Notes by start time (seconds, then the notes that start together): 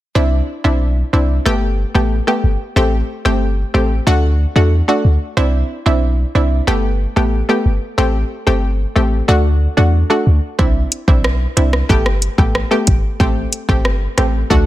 0.15 C2 C4 D4 E4
0.64 B1 C4 D4 E4
1.13 C2 C4 D4 E4
1.46 G1 A3 B3 G4
1.95 A1 A3 B3 G4
2.27 A3 B3 G4
2.44 G1
2.76 A1 A3 C4 G4
3.25 G1 A3 C4 G4
3.74 A1 A3 C4 G4
4.07 D2 A3 D4 F#4
4.56 E2 A3 D4 F#4
4.88 A3 D4 F#4
5.05 D2
5.37 C2 C4 D4 E4
5.86 B1 C4 D4 E4
6.35 C2 C4 D4 E4
6.67 G1 A3 B3 G4
7.16 A1 A3 B3 G4
7.49 A3 B3 G4
7.65 G1
7.98 A1 A3 C4 G4
8.47 G1 A3 C4 G4
8.96 A1 A3 C4 G4
9.28 D2 A3 D4 F#4
9.77 E2 A3 D4 F#4
10.10 A3 D4 F#4
10.27 D2
10.59 C2 C4 D4 E4, kick
10.92 closed hi-hat
11.08 B1 C4 D4 E4, kick
11.24 cross-stick
11.57 C2 C4 D4 E4, closed hi-hat
11.73 cross-stick
11.89 G1 A3 B3 G4, kick
12.06 cross-stick
12.22 closed hi-hat
12.38 A1 A3 B3 G4, kick
12.55 cross-stick
12.71 A3 B3 G4
12.87 G1, kick, closed hi-hat
13.20 A1 A3 C4 G4, kick
13.53 closed hi-hat
13.69 G1 A3 C4 G4, kick
13.85 cross-stick
14.18 A1 A3 C4 G4, cross-stick, closed hi-hat
14.50 D2 A3 D4 F#4, kick